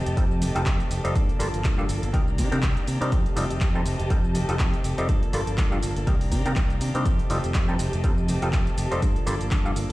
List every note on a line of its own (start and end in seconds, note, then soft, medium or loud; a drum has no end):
0.00 1.14 G4 medium
0.00 1.14 D#5 medium
0.00 1.14 A5 medium
0.06 0.15 F1 medium
0.06 0.40 A3 soft
0.06 0.41 C4 medium
0.06 0.41 G4 medium
0.06 closed hi-hat medium
0.06 shaker soft
0.17 0.43 F2 medium
0.17 0.25 G3 medium
0.17 0.25 C4 medium
0.17 0.25 D#4 medium
0.17 0.25 F4 medium
0.17 0.25 A4 medium
0.17 kick loud
0.17 closed hi-hat medium
0.17 shaker soft
0.31 shaker soft
0.41 0.53 F1 medium
0.41 0.65 D#3 medium
0.41 0.65 A3 medium
0.41 0.65 C4 medium
0.41 0.66 G4 medium
0.41 open hi-hat loud
0.41 shaker medium
0.55 0.64 F1 loud
0.55 0.61 G3 medium
0.55 0.62 C4 medium
0.55 0.62 D#4 medium
0.55 0.62 F4 medium
0.55 0.62 A4 medium
0.55 closed hi-hat medium
0.55 shaker soft
0.66 0.78 F2 loud
0.66 0.89 D#3 medium
0.66 0.90 A3 medium
0.66 0.90 C4 medium
0.66 0.91 G4 medium
0.66 kick loud
0.66 clap loud
0.66 closed hi-hat medium
0.66 shaker soft
0.80 closed hi-hat soft
0.80 shaker soft
0.90 1.02 F1 medium
0.90 1.04 D#3 medium
0.90 1.05 A3 medium
0.90 1.04 C4 medium
0.90 1.03 G4 medium
0.90 open hi-hat loud
0.90 shaker medium
1.04 1.14 F1 medium
1.04 1.14 G3 medium
1.04 1.15 A3 medium
1.04 1.14 C4 medium
1.04 1.15 C4 medium
1.04 1.14 D#4 medium
1.04 1.14 F4 medium
1.04 1.15 G4 medium
1.04 1.14 A4 medium
1.04 closed hi-hat medium
1.04 shaker soft
1.15 1.27 G2 loud
1.15 1.38 F3 medium
1.15 1.39 A#3 medium
1.15 2.13 A#3 medium
1.15 1.39 D4 medium
1.15 2.13 F4 medium
1.15 1.40 A4 loud
1.15 2.13 A5 medium
1.15 kick loud
1.15 closed hi-hat medium
1.15 shaker soft
1.29 muted fingered electric bass stroke soft
1.29 closed hi-hat soft
1.29 shaker soft
1.39 1.51 G1 medium
1.39 1.63 F3 medium
1.39 1.47 G3 medium
1.39 1.48 A#3 medium
1.39 1.63 A#3 medium
1.39 1.48 D4 medium
1.39 1.64 D4 medium
1.39 1.48 F4 medium
1.39 1.48 A4 loud
1.39 1.64 A4 medium
1.39 open hi-hat loud
1.39 shaker medium
1.54 1.63 G1 medium
1.54 closed hi-hat medium
1.54 shaker soft
1.64 1.85 G2 medium
1.64 1.87 F3 medium
1.64 1.88 A#3 medium
1.64 1.89 A4 loud
1.64 kick loud
1.64 clap loud
1.64 closed hi-hat medium
1.64 shaker soft
1.78 1.84 G3 medium
1.78 1.84 A#3 medium
1.78 1.84 D4 medium
1.78 1.84 F4 medium
1.78 1.85 A4 loud
1.78 shaker soft
1.89 2.01 G1 medium
1.89 2.03 F3 medium
1.89 2.03 A#3 medium
1.89 2.02 D4 medium
1.89 2.01 A4 medium
1.89 open hi-hat loud
1.89 shaker medium
2.02 2.12 G1 loud
2.02 2.13 A#3 soft
2.02 2.13 D4 medium
2.02 2.13 A4 medium
2.02 closed hi-hat soft
2.02 shaker soft
2.13 2.40 C2 medium
2.13 2.37 D#3 medium
2.13 3.11 D#3 medium
2.13 2.21 G3 medium
2.13 2.37 A#3 medium
2.13 2.22 C4 medium
2.13 2.22 D4 medium
2.13 2.38 D4 medium
2.13 2.22 D#4 medium
2.13 2.39 G4 loud
2.13 2.22 A#4 medium
2.13 3.11 D5 medium
2.13 3.11 A#5 medium
2.13 kick loud
2.13 closed hi-hat medium
2.13 shaker soft
2.28 shaker soft
2.38 2.50 C3 loud
2.38 2.61 D#3 medium
2.38 2.62 A#3 medium
2.38 2.62 D4 medium
2.38 2.63 G4 medium
2.38 kick medium
2.38 open hi-hat loud
2.38 shaker medium
2.52 2.61 C3 medium
2.52 2.58 G3 medium
2.52 2.58 C4 medium
2.52 2.58 D4 medium
2.52 2.58 D#4 medium
2.52 2.58 A#4 medium
2.52 closed hi-hat medium
2.52 shaker soft
2.62 2.74 C2 loud
2.62 2.86 D#3 medium
2.62 2.86 A#3 loud
2.62 2.87 D4 medium
2.62 2.88 G4 loud
2.62 kick loud
2.62 clap loud
2.62 closed hi-hat medium
2.62 shaker soft
2.77 closed hi-hat soft
2.77 shaker soft
2.87 2.99 C3 medium
2.87 3.01 D#3 medium
2.87 3.01 A#3 medium
2.87 3.01 D4 medium
2.87 3.00 G4 medium
2.87 open hi-hat loud
2.87 shaker medium
3.01 3.10 C3 medium
3.01 3.11 G3 medium
3.01 3.12 A#3 medium
3.01 3.11 C4 medium
3.01 3.11 D4 medium
3.01 3.12 D4 medium
3.01 3.11 D#4 medium
3.01 3.12 G4 medium
3.01 3.11 A#4 medium
3.01 closed hi-hat medium
3.01 shaker soft
3.12 3.24 F2 loud
3.12 3.35 D#3 medium
3.12 3.36 A3 loud
3.12 3.36 C4 loud
3.12 5.07 G4 medium
3.12 3.37 G4 loud
3.12 5.07 D#5 medium
3.12 5.07 A5 medium
3.12 kick loud
3.12 closed hi-hat medium
3.12 shaker soft
3.26 muted fingered electric bass stroke soft
3.26 closed hi-hat soft
3.26 shaker soft
3.36 3.48 F1 medium
3.36 3.60 D#3 medium
3.36 3.44 G3 medium
3.36 3.60 A3 medium
3.36 3.44 C4 medium
3.36 3.61 C4 medium
3.36 3.44 D#4 medium
3.36 3.45 F4 medium
3.36 3.61 G4 medium
3.36 3.45 A4 loud
3.36 open hi-hat loud
3.36 shaker medium
3.50 3.60 F1 medium
3.50 closed hi-hat medium
3.50 shaker soft
3.61 3.82 F2 medium
3.61 3.84 D#3 medium
3.61 3.85 A3 medium
3.61 3.85 C4 medium
3.61 3.86 G4 loud
3.61 kick loud
3.61 clap loud
3.61 closed hi-hat medium
3.61 shaker soft
3.75 3.81 G3 medium
3.75 3.81 C4 medium
3.75 3.81 D#4 medium
3.75 3.81 F4 medium
3.75 3.81 A4 loud
3.75 shaker soft
3.85 3.97 F1 medium
3.85 3.99 D#3 medium
3.85 4.00 A3 medium
3.85 3.99 C4 medium
3.85 3.98 G4 medium
3.85 open hi-hat loud
3.85 shaker medium
3.99 4.09 F1 loud
3.99 4.34 A3 soft
3.99 4.35 C4 medium
3.99 4.35 G4 medium
3.99 closed hi-hat soft
3.99 shaker soft
4.10 4.37 F2 medium
4.10 4.18 G3 medium
4.10 4.18 C4 medium
4.10 4.18 D#4 medium
4.10 4.18 F4 medium
4.10 4.19 A4 medium
4.10 kick loud
4.10 closed hi-hat medium
4.10 shaker soft
4.24 shaker soft
4.34 4.47 F1 medium
4.34 4.58 D#3 medium
4.34 4.58 A3 medium
4.34 4.59 C4 medium
4.34 4.59 G4 medium
4.34 open hi-hat loud
4.34 shaker medium
4.49 4.58 F1 medium
4.49 4.55 G3 medium
4.49 4.55 C4 medium
4.49 4.55 D#4 medium
4.49 4.55 F4 medium
4.49 4.55 A4 medium
4.49 closed hi-hat soft
4.49 shaker soft
4.59 4.71 F2 loud
4.59 4.82 D#3 medium
4.59 4.83 A3 medium
4.59 4.84 C4 loud
4.59 4.84 G4 loud
4.59 kick loud
4.59 clap loud
4.59 closed hi-hat medium
4.59 shaker soft
4.73 closed hi-hat soft
4.73 shaker soft
4.84 4.96 F1 medium
4.84 4.98 D#3 medium
4.84 4.98 A3 medium
4.84 4.97 C4 medium
4.84 4.96 G4 medium
4.84 open hi-hat loud
4.84 shaker medium
4.97 5.07 F1 medium
4.97 5.08 G3 medium
4.97 5.08 A3 medium
4.97 5.08 C4 medium
4.97 5.09 C4 medium
4.97 5.08 D#4 medium
4.97 5.08 F4 medium
4.97 5.09 G4 medium
4.97 5.08 A4 medium
4.97 closed hi-hat medium
4.97 shaker soft
5.08 5.20 G2 loud
5.08 5.32 F3 medium
5.08 6.06 A#3 medium
5.08 5.32 A#3 medium
5.08 5.33 D4 loud
5.08 6.06 F4 medium
5.08 5.33 A4 loud
5.08 6.06 A5 medium
5.08 kick loud
5.08 closed hi-hat medium
5.08 shaker soft
5.23 muted fingered electric bass stroke soft
5.23 closed hi-hat soft
5.23 shaker soft
5.33 5.45 G1 medium
5.33 5.56 F3 medium
5.33 5.41 G3 medium
5.33 5.41 A#3 medium
5.33 5.57 A#3 medium
5.33 5.41 D4 medium
5.33 5.57 D4 medium
5.33 5.42 F4 medium
5.33 5.42 A4 loud
5.33 5.58 A4 medium
5.33 open hi-hat loud
5.33 shaker medium
5.47 5.56 G1 medium
5.47 closed hi-hat soft
5.47 shaker soft
5.58 5.79 G2 medium
5.58 5.81 F3 medium
5.58 5.82 A#3 medium
5.58 5.82 D4 medium
5.58 5.83 A4 loud
5.58 kick loud
5.58 clap loud
5.58 closed hi-hat medium
5.58 shaker soft
5.71 5.78 G3 medium
5.71 5.78 A#3 medium
5.71 5.78 D4 medium
5.71 5.78 F4 medium
5.71 5.78 A4 loud
5.71 shaker soft
5.82 5.94 G1 medium
5.82 5.96 F3 medium
5.82 5.97 A#3 medium
5.82 5.96 D4 medium
5.82 5.95 A4 medium
5.82 open hi-hat loud
5.82 shaker medium
5.96 6.05 G1 loud
5.96 6.06 A#3 medium
5.96 6.07 D4 medium
5.96 6.07 A4 medium
5.96 closed hi-hat soft
5.96 shaker soft
6.07 6.33 C2 medium
6.07 6.30 D#3 medium
6.07 7.05 D#3 medium
6.07 6.15 G3 medium
6.07 6.31 A#3 medium
6.07 6.15 C4 medium
6.07 6.15 D4 medium
6.07 6.32 D4 medium
6.07 6.15 D#4 medium
6.07 6.32 G4 medium
6.07 6.15 A#4 medium
6.07 7.05 D5 medium
6.07 7.05 A#5 medium
6.07 kick loud
6.07 closed hi-hat medium
6.07 shaker soft
6.21 open hi-hat medium
6.21 shaker soft
6.31 6.43 C3 medium
6.31 6.55 D#3 medium
6.31 6.55 A#3 medium
6.31 6.56 D4 medium
6.31 6.56 G4 medium
6.31 kick medium
6.31 open hi-hat loud
6.31 shaker medium
6.46 6.55 C3 loud
6.46 6.52 G3 medium
6.46 6.52 C4 medium
6.46 6.52 D4 medium
6.46 6.52 D#4 medium
6.46 6.52 A#4 medium
6.46 closed hi-hat soft
6.46 shaker soft
6.56 6.77 C2 loud
6.56 6.79 D#3 medium
6.56 6.80 A#3 medium
6.56 6.81 D4 medium
6.56 6.81 G4 loud
6.56 kick loud
6.56 clap loud
6.56 closed hi-hat medium
6.56 shaker soft
6.70 closed hi-hat soft
6.70 shaker soft
6.80 6.92 C3 medium
6.80 6.95 D#3 medium
6.80 6.95 A#3 medium
6.80 6.94 D4 medium
6.80 6.93 G4 medium
6.80 open hi-hat loud
6.80 shaker medium
6.94 7.04 C3 medium
6.94 7.04 G3 medium
6.94 7.05 A#3 medium
6.94 7.04 C4 medium
6.94 7.04 D4 medium
6.94 7.06 D4 medium
6.94 7.05 D#4 medium
6.94 7.05 G4 medium
6.94 7.05 A#4 medium
6.94 closed hi-hat medium
6.94 shaker soft
7.05 7.17 F2 loud
7.05 7.28 D#3 medium
7.05 7.29 A3 medium
7.05 7.30 C4 medium
7.05 9.00 G4 medium
7.05 7.30 G4 medium
7.05 9.00 D#5 medium
7.05 9.92 A5 medium
7.05 kick loud
7.05 closed hi-hat medium
7.05 shaker soft
7.19 muted fingered electric bass stroke soft
7.19 closed hi-hat soft
7.19 shaker soft
7.30 7.42 F1 medium
7.30 7.53 D#3 medium
7.30 7.38 G3 medium
7.30 7.54 A3 medium
7.30 7.38 C4 medium
7.30 7.54 C4 medium
7.30 7.38 D#4 medium
7.30 7.38 F4 medium
7.30 7.54 G4 medium
7.30 7.38 A4 loud
7.30 open hi-hat loud
7.30 shaker medium
7.44 7.53 F1 medium
7.44 closed hi-hat soft
7.44 shaker soft
7.54 7.76 F2 medium
7.54 7.78 A3 medium
7.54 7.79 G4 medium
7.54 kick loud
7.54 clap loud
7.54 closed hi-hat medium
7.54 shaker soft
7.68 7.75 G3 medium
7.68 7.75 C4 medium
7.68 7.75 D#4 medium
7.68 7.75 F4 medium
7.68 7.75 A4 loud
7.68 shaker soft
7.79 7.91 F1 medium
7.79 7.93 D#3 medium
7.79 7.93 A3 medium
7.79 7.93 C4 medium
7.79 7.92 G4 medium
7.79 open hi-hat loud
7.79 shaker medium
7.93 8.02 F1 loud
7.93 8.28 A3 medium
7.93 8.28 C4 medium
7.93 8.28 G4 medium
7.93 closed hi-hat soft
7.93 shaker soft
8.04 8.30 F2 medium
8.04 8.12 G3 medium
8.04 8.12 C4 medium
8.04 8.12 D#4 medium
8.04 8.12 F4 medium
8.04 8.12 A4 loud
8.04 kick loud
8.04 closed hi-hat medium
8.04 shaker soft
8.18 shaker soft
8.28 8.40 F1 medium
8.28 8.52 D#3 medium
8.28 8.52 A3 medium
8.28 8.52 C4 medium
8.28 8.53 G4 medium
8.28 open hi-hat loud
8.28 shaker medium
8.42 8.51 F1 medium
8.42 8.48 G3 medium
8.42 8.49 C4 medium
8.42 8.49 D#4 medium
8.42 8.49 F4 medium
8.42 8.49 A4 medium
8.42 closed hi-hat soft
8.42 shaker soft
8.53 8.65 F2 loud
8.53 8.76 D#3 medium
8.53 8.77 A3 medium
8.53 8.77 C4 medium
8.53 8.78 G4 loud
8.53 kick loud
8.53 clap loud
8.53 closed hi-hat medium
8.53 shaker soft
8.67 closed hi-hat soft
8.67 shaker soft
8.77 8.89 F1 medium
8.77 8.91 D#3 medium
8.77 8.92 A3 medium
8.77 8.91 C4 medium
8.77 8.90 G4 medium
8.77 open hi-hat loud
8.77 shaker medium
8.91 9.00 F1 medium
8.91 9.01 G3 medium
8.91 9.02 A3 medium
8.91 9.01 C4 medium
8.91 9.02 C4 medium
8.91 9.01 D#4 medium
8.91 9.01 F4 medium
8.91 9.02 G4 medium
8.91 9.01 A4 medium
8.91 closed hi-hat medium
8.91 shaker soft
9.02 9.14 G2 loud
9.02 9.25 F3 medium
9.02 9.92 A#3 medium
9.02 9.26 A#3 medium
9.02 9.27 D4 loud
9.02 9.92 F4 medium
9.02 9.27 A4 loud
9.02 kick loud
9.02 closed hi-hat medium
9.02 shaker soft
9.16 muted fingered electric bass stroke soft
9.16 closed hi-hat soft
9.16 shaker soft
9.26 9.39 G1 medium
9.26 9.50 F3 medium
9.26 9.35 G3 medium
9.26 9.35 A#3 medium
9.26 9.50 A#3 medium
9.26 9.35 D4 medium
9.26 9.51 D4 medium
9.26 9.35 F4 medium
9.26 9.35 A4 loud
9.26 9.51 A4 medium
9.26 open hi-hat loud
9.26 shaker medium
9.41 9.50 G1 medium
9.41 closed hi-hat soft
9.41 shaker soft
9.51 9.72 G2 medium
9.51 9.74 F3 medium
9.51 9.75 A#3 medium
9.51 9.76 D4 loud
9.51 9.76 A4 loud
9.51 kick loud
9.51 clap loud
9.51 closed hi-hat medium
9.51 shaker soft
9.65 9.71 G3 medium
9.65 9.71 A#3 medium
9.65 9.71 D4 medium
9.65 9.72 F4 medium
9.65 9.72 A4 loud
9.65 shaker soft
9.75 9.88 G1 medium
9.75 9.90 F3 medium
9.75 9.90 A#3 medium
9.75 9.89 D4 medium
9.75 9.88 A4 medium
9.75 open hi-hat loud
9.75 shaker medium